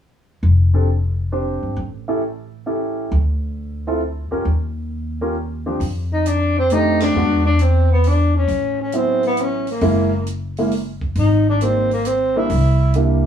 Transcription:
0.43 F1
0.74 C4 D4 G4 A4
1.32 C4 D4 G4 C5
1.63 G1
1.76 A1
2.08 C#4 E4 G4 A4
2.66 C#4 E4 G4 A4
3.11 D2
3.87 C4 E4 F4 A4
4.31 C#4 F4 G4 A#4, muted upright bass stroke
4.45 D#2
5.21 C#4 F4 G4 A#4
5.66 F3 C4 D4 G4 C5
5.80 F2, kick, open hi-hat
6.12 D#4
6.26 D4, closed hi-hat
6.58 C4
6.70 A3 C4 D4 D#4 G4, closed hi-hat
7.00 D4, snare, ride
7.15 E2 G#3 B3 D4 F#4
7.46 D4
7.59 C4, closed hi-hat
7.92 B3
8.04 open hi-hat
8.08 D4
8.37 C#4
8.48 A1, kick, open hi-hat
8.82 C#4
8.92 F#3 B3 C#4 E4, closed hi-hat
8.96 C4
9.23 B3, open hi-hat
9.37 closed hi-hat
9.41 C#4
9.67 open hi-hat
9.71 A#3
9.81 F#1 G#3 A#3 C#4 E4, kick, open hi-hat
10.26 closed hi-hat
10.57 G#3 A#3 C#4 E4, open hi-hat
10.71 open hi-hat
11.01 kick
11.15 G#1 D#4, kick, open hi-hat
11.49 D4
11.61 G3 A#3 C4 D#4, closed hi-hat
11.91 A#3, open hi-hat
12.05 C4, closed hi-hat
12.36 G3 A#3 D4 E4
12.49 C2, kick, open hi-hat
12.94 G3 A#3 D4 E4, closed hi-hat

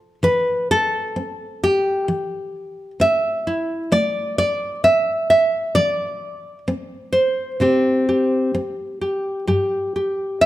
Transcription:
Already playing: F4 A4 C5
0.23 E3 B4
0.71 A4
1.16 C4
1.64 G4
2.08 E3
3.00 C4 E5
3.47 E4
3.92 A3 D5
4.38 D5
4.84 C4 E5
5.30 E5
5.75 E3 D5
6.68 C4
7.12 C5
7.60 C3 C4 G4
8.09 G4
8.55 C4
9.01 G4
9.47 G2 G4
9.96 G4
10.41 E5

